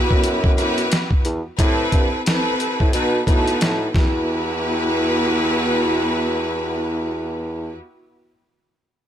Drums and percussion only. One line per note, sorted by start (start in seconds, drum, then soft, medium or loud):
0.11 kick medium
0.24 closed hi-hat medium
0.44 kick medium
0.58 closed hi-hat medium
0.78 closed hi-hat medium
0.92 snare loud
0.92 closed hi-hat medium
1.11 kick medium
1.25 closed hi-hat medium
1.59 kick loud
1.59 closed hi-hat loud
1.92 kick loud
1.92 closed hi-hat medium
2.26 snare loud
2.26 closed hi-hat medium
2.60 closed hi-hat medium
2.80 kick medium
2.93 closed hi-hat medium
3.27 kick medium
3.27 closed hi-hat medium
3.47 closed hi-hat medium
3.61 snare loud
3.61 closed hi-hat medium
3.94 kick loud
3.94 snare medium